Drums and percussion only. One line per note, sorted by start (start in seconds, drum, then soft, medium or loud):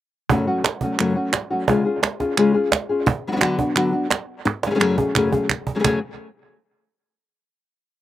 0.30 cajon bass medium
0.64 cajon slap medium
0.64 clap medium
0.81 cajon bass medium
0.99 clap medium
1.33 cajon slap medium
1.33 clap medium
1.68 cajon bass medium
2.03 cajon slap medium
2.03 clap medium
2.20 cajon bass medium
2.20 cajon slap soft
2.37 clap medium
2.55 cajon slap soft
2.72 cajon bass medium
2.72 cajon slap medium
2.72 clap medium
3.07 cajon bass medium
3.41 cajon slap medium
3.41 clap medium
3.59 cajon bass medium
3.76 clap medium
3.93 cajon slap soft
4.10 cajon slap medium
4.10 clap medium
4.46 cajon slap medium
4.63 cajon slap medium
4.81 clap medium
4.98 cajon bass medium
5.15 cajon bass medium
5.15 clap medium
5.32 cajon bass medium
5.49 cajon bass medium
5.49 clap medium
5.67 cajon bass medium
5.84 cajon bass medium
5.84 clap medium